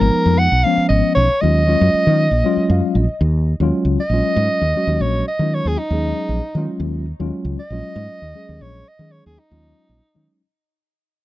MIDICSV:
0, 0, Header, 1, 5, 480
1, 0, Start_track
1, 0, Key_signature, -6, "minor"
1, 0, Tempo, 513259
1, 1331, Time_signature, 7, 3, 24, 8
1, 10515, End_track
2, 0, Start_track
2, 0, Title_t, "Soprano saxophone"
2, 0, Program_c, 0, 64
2, 0, Note_on_c, 0, 70, 88
2, 361, Note_on_c, 0, 78, 99
2, 375, Note_off_c, 0, 70, 0
2, 596, Note_on_c, 0, 77, 90
2, 610, Note_off_c, 0, 78, 0
2, 826, Note_off_c, 0, 77, 0
2, 832, Note_on_c, 0, 75, 74
2, 1064, Note_off_c, 0, 75, 0
2, 1074, Note_on_c, 0, 73, 91
2, 1321, Note_on_c, 0, 75, 96
2, 1335, Note_off_c, 0, 73, 0
2, 2763, Note_off_c, 0, 75, 0
2, 3745, Note_on_c, 0, 75, 104
2, 4691, Note_on_c, 0, 73, 85
2, 4705, Note_off_c, 0, 75, 0
2, 4921, Note_off_c, 0, 73, 0
2, 4938, Note_on_c, 0, 75, 76
2, 5187, Note_on_c, 0, 73, 77
2, 5201, Note_off_c, 0, 75, 0
2, 5309, Note_on_c, 0, 68, 74
2, 5323, Note_off_c, 0, 73, 0
2, 5410, Note_on_c, 0, 63, 91
2, 5424, Note_off_c, 0, 68, 0
2, 6339, Note_off_c, 0, 63, 0
2, 7103, Note_on_c, 0, 75, 95
2, 8060, Note_on_c, 0, 73, 80
2, 8074, Note_off_c, 0, 75, 0
2, 8307, Note_on_c, 0, 75, 81
2, 8321, Note_off_c, 0, 73, 0
2, 8528, Note_on_c, 0, 73, 72
2, 8542, Note_off_c, 0, 75, 0
2, 8640, Note_off_c, 0, 73, 0
2, 8663, Note_on_c, 0, 68, 69
2, 8781, Note_on_c, 0, 63, 81
2, 8795, Note_off_c, 0, 68, 0
2, 9710, Note_off_c, 0, 63, 0
2, 10515, End_track
3, 0, Start_track
3, 0, Title_t, "Tine electric piano"
3, 0, Program_c, 1, 4
3, 0, Note_on_c, 1, 53, 73
3, 0, Note_on_c, 1, 56, 66
3, 0, Note_on_c, 1, 59, 68
3, 0, Note_on_c, 1, 63, 79
3, 436, Note_off_c, 1, 53, 0
3, 437, Note_off_c, 1, 56, 0
3, 441, Note_off_c, 1, 59, 0
3, 443, Note_off_c, 1, 63, 0
3, 607, Note_on_c, 1, 53, 74
3, 612, Note_on_c, 1, 56, 60
3, 618, Note_on_c, 1, 59, 60
3, 619, Note_on_c, 1, 61, 75
3, 1154, Note_off_c, 1, 53, 0
3, 1157, Note_off_c, 1, 56, 0
3, 1159, Note_off_c, 1, 59, 0
3, 1160, Note_off_c, 1, 61, 0
3, 1324, Note_on_c, 1, 54, 70
3, 1329, Note_on_c, 1, 56, 61
3, 1331, Note_on_c, 1, 61, 56
3, 1338, Note_on_c, 1, 65, 76
3, 1509, Note_off_c, 1, 54, 0
3, 1511, Note_off_c, 1, 56, 0
3, 1513, Note_off_c, 1, 61, 0
3, 1516, Note_off_c, 1, 65, 0
3, 1566, Note_on_c, 1, 54, 62
3, 1570, Note_on_c, 1, 56, 62
3, 1570, Note_on_c, 1, 61, 62
3, 1578, Note_on_c, 1, 65, 76
3, 2112, Note_off_c, 1, 54, 0
3, 2114, Note_off_c, 1, 56, 0
3, 2114, Note_off_c, 1, 61, 0
3, 2118, Note_off_c, 1, 65, 0
3, 2282, Note_on_c, 1, 54, 80
3, 2288, Note_on_c, 1, 56, 75
3, 2291, Note_on_c, 1, 61, 67
3, 2299, Note_on_c, 1, 65, 95
3, 2536, Note_on_c, 1, 77, 62
3, 2755, Note_off_c, 1, 77, 0
3, 2771, Note_on_c, 1, 75, 61
3, 2830, Note_off_c, 1, 54, 0
3, 2833, Note_off_c, 1, 56, 0
3, 2834, Note_off_c, 1, 61, 0
3, 2838, Note_off_c, 1, 65, 0
3, 2992, Note_off_c, 1, 75, 0
3, 3377, Note_on_c, 1, 54, 88
3, 3380, Note_on_c, 1, 56, 77
3, 3385, Note_on_c, 1, 61, 77
3, 3392, Note_on_c, 1, 65, 92
3, 3735, Note_off_c, 1, 54, 0
3, 3736, Note_off_c, 1, 56, 0
3, 3739, Note_off_c, 1, 61, 0
3, 3742, Note_off_c, 1, 65, 0
3, 3856, Note_on_c, 1, 54, 67
3, 3858, Note_on_c, 1, 56, 62
3, 3866, Note_on_c, 1, 61, 68
3, 3869, Note_on_c, 1, 65, 73
3, 4305, Note_off_c, 1, 54, 0
3, 4306, Note_off_c, 1, 56, 0
3, 4310, Note_off_c, 1, 61, 0
3, 4311, Note_off_c, 1, 65, 0
3, 4448, Note_on_c, 1, 54, 73
3, 4451, Note_on_c, 1, 56, 65
3, 4458, Note_on_c, 1, 61, 61
3, 4462, Note_on_c, 1, 66, 74
3, 4901, Note_off_c, 1, 54, 0
3, 4903, Note_off_c, 1, 56, 0
3, 4906, Note_off_c, 1, 61, 0
3, 4908, Note_off_c, 1, 66, 0
3, 5050, Note_on_c, 1, 54, 64
3, 5058, Note_on_c, 1, 56, 58
3, 5066, Note_on_c, 1, 61, 52
3, 5070, Note_on_c, 1, 65, 62
3, 5411, Note_off_c, 1, 54, 0
3, 5415, Note_off_c, 1, 56, 0
3, 5419, Note_off_c, 1, 61, 0
3, 5421, Note_off_c, 1, 65, 0
3, 5532, Note_on_c, 1, 54, 73
3, 5533, Note_on_c, 1, 56, 62
3, 5543, Note_on_c, 1, 61, 58
3, 5544, Note_on_c, 1, 68, 70
3, 5983, Note_off_c, 1, 54, 0
3, 5984, Note_off_c, 1, 56, 0
3, 5989, Note_off_c, 1, 61, 0
3, 5989, Note_off_c, 1, 68, 0
3, 6130, Note_on_c, 1, 54, 77
3, 6137, Note_on_c, 1, 56, 75
3, 6145, Note_on_c, 1, 61, 67
3, 6149, Note_on_c, 1, 65, 87
3, 6583, Note_off_c, 1, 54, 0
3, 6586, Note_off_c, 1, 56, 0
3, 6590, Note_off_c, 1, 61, 0
3, 6592, Note_off_c, 1, 65, 0
3, 6727, Note_on_c, 1, 54, 82
3, 6732, Note_on_c, 1, 56, 74
3, 6737, Note_on_c, 1, 61, 74
3, 6742, Note_on_c, 1, 65, 87
3, 7090, Note_off_c, 1, 54, 0
3, 7093, Note_off_c, 1, 56, 0
3, 7095, Note_off_c, 1, 61, 0
3, 7098, Note_off_c, 1, 65, 0
3, 7209, Note_on_c, 1, 54, 69
3, 7217, Note_on_c, 1, 56, 54
3, 7219, Note_on_c, 1, 61, 61
3, 7225, Note_on_c, 1, 65, 67
3, 7663, Note_off_c, 1, 54, 0
3, 7667, Note_off_c, 1, 56, 0
3, 7668, Note_off_c, 1, 61, 0
3, 7671, Note_off_c, 1, 65, 0
3, 7806, Note_on_c, 1, 54, 65
3, 7810, Note_on_c, 1, 56, 62
3, 7815, Note_on_c, 1, 61, 60
3, 7820, Note_on_c, 1, 68, 64
3, 8263, Note_off_c, 1, 54, 0
3, 8264, Note_off_c, 1, 56, 0
3, 8267, Note_off_c, 1, 61, 0
3, 8269, Note_off_c, 1, 68, 0
3, 8409, Note_on_c, 1, 54, 58
3, 8416, Note_on_c, 1, 56, 50
3, 8420, Note_on_c, 1, 61, 50
3, 8427, Note_on_c, 1, 68, 57
3, 8774, Note_off_c, 1, 54, 0
3, 8777, Note_off_c, 1, 56, 0
3, 8779, Note_off_c, 1, 61, 0
3, 8782, Note_off_c, 1, 68, 0
3, 8891, Note_on_c, 1, 54, 64
3, 8896, Note_on_c, 1, 56, 59
3, 8902, Note_on_c, 1, 61, 63
3, 8903, Note_on_c, 1, 65, 75
3, 9347, Note_off_c, 1, 54, 0
3, 9349, Note_off_c, 1, 56, 0
3, 9352, Note_off_c, 1, 61, 0
3, 9353, Note_off_c, 1, 65, 0
3, 9490, Note_on_c, 1, 54, 66
3, 9494, Note_on_c, 1, 56, 62
3, 9501, Note_on_c, 1, 61, 58
3, 9504, Note_on_c, 1, 63, 72
3, 9732, Note_off_c, 1, 54, 0
3, 9734, Note_off_c, 1, 56, 0
3, 9737, Note_off_c, 1, 61, 0
3, 9739, Note_off_c, 1, 63, 0
3, 10515, End_track
4, 0, Start_track
4, 0, Title_t, "Fretless electric bass"
4, 0, Program_c, 2, 35
4, 11, Note_on_c, 2, 32, 83
4, 110, Note_off_c, 2, 32, 0
4, 240, Note_on_c, 2, 41, 84
4, 441, Note_off_c, 2, 41, 0
4, 483, Note_on_c, 2, 35, 83
4, 585, Note_off_c, 2, 35, 0
4, 840, Note_on_c, 2, 32, 81
4, 943, Note_off_c, 2, 32, 0
4, 1090, Note_on_c, 2, 35, 85
4, 1188, Note_off_c, 2, 35, 0
4, 1340, Note_on_c, 2, 39, 78
4, 1629, Note_off_c, 2, 39, 0
4, 1695, Note_on_c, 2, 42, 80
4, 1791, Note_off_c, 2, 42, 0
4, 1934, Note_on_c, 2, 51, 88
4, 2128, Note_off_c, 2, 51, 0
4, 2162, Note_on_c, 2, 34, 78
4, 2263, Note_off_c, 2, 34, 0
4, 2521, Note_on_c, 2, 42, 84
4, 2622, Note_off_c, 2, 42, 0
4, 2760, Note_on_c, 2, 34, 78
4, 2861, Note_off_c, 2, 34, 0
4, 2999, Note_on_c, 2, 39, 86
4, 3296, Note_off_c, 2, 39, 0
4, 3367, Note_on_c, 2, 39, 80
4, 3464, Note_off_c, 2, 39, 0
4, 3599, Note_on_c, 2, 37, 76
4, 3700, Note_off_c, 2, 37, 0
4, 3830, Note_on_c, 2, 34, 68
4, 3934, Note_off_c, 2, 34, 0
4, 4081, Note_on_c, 2, 44, 89
4, 4181, Note_off_c, 2, 44, 0
4, 4315, Note_on_c, 2, 39, 65
4, 4417, Note_off_c, 2, 39, 0
4, 4556, Note_on_c, 2, 39, 75
4, 4658, Note_off_c, 2, 39, 0
4, 4680, Note_on_c, 2, 34, 79
4, 4878, Note_off_c, 2, 34, 0
4, 5043, Note_on_c, 2, 51, 69
4, 5239, Note_off_c, 2, 51, 0
4, 5286, Note_on_c, 2, 39, 71
4, 5383, Note_off_c, 2, 39, 0
4, 5522, Note_on_c, 2, 39, 82
4, 5719, Note_off_c, 2, 39, 0
4, 5881, Note_on_c, 2, 34, 77
4, 5981, Note_off_c, 2, 34, 0
4, 6123, Note_on_c, 2, 51, 67
4, 6222, Note_off_c, 2, 51, 0
4, 6356, Note_on_c, 2, 39, 76
4, 6654, Note_off_c, 2, 39, 0
4, 6732, Note_on_c, 2, 39, 67
4, 6828, Note_off_c, 2, 39, 0
4, 6964, Note_on_c, 2, 37, 72
4, 7063, Note_off_c, 2, 37, 0
4, 7204, Note_on_c, 2, 34, 65
4, 7303, Note_off_c, 2, 34, 0
4, 7442, Note_on_c, 2, 44, 79
4, 7542, Note_off_c, 2, 44, 0
4, 7686, Note_on_c, 2, 39, 62
4, 7785, Note_off_c, 2, 39, 0
4, 7938, Note_on_c, 2, 39, 67
4, 8032, Note_off_c, 2, 39, 0
4, 8052, Note_on_c, 2, 34, 66
4, 8247, Note_off_c, 2, 34, 0
4, 8407, Note_on_c, 2, 51, 69
4, 8604, Note_off_c, 2, 51, 0
4, 8661, Note_on_c, 2, 39, 68
4, 8755, Note_off_c, 2, 39, 0
4, 8897, Note_on_c, 2, 39, 77
4, 9091, Note_off_c, 2, 39, 0
4, 9250, Note_on_c, 2, 34, 67
4, 9349, Note_off_c, 2, 34, 0
4, 9499, Note_on_c, 2, 51, 53
4, 9594, Note_off_c, 2, 51, 0
4, 10515, End_track
5, 0, Start_track
5, 0, Title_t, "Muted fretless electric bass strokes"
5, 138, Note_on_c, 9, 29, 32
5, 231, Note_off_c, 9, 29, 0
5, 723, Note_on_c, 9, 29, 35
5, 817, Note_off_c, 9, 29, 0
5, 1216, Note_on_c, 9, 29, 31
5, 1310, Note_off_c, 9, 29, 0
5, 1812, Note_on_c, 9, 29, 35
5, 1906, Note_off_c, 9, 29, 0
5, 2402, Note_on_c, 9, 29, 34
5, 2495, Note_off_c, 9, 29, 0
5, 2886, Note_on_c, 9, 29, 34
5, 2980, Note_off_c, 9, 29, 0
5, 3722, Note_on_c, 9, 29, 32
5, 3816, Note_off_c, 9, 29, 0
5, 7088, Note_on_c, 9, 29, 28
5, 7181, Note_off_c, 9, 29, 0
5, 10515, End_track
0, 0, End_of_file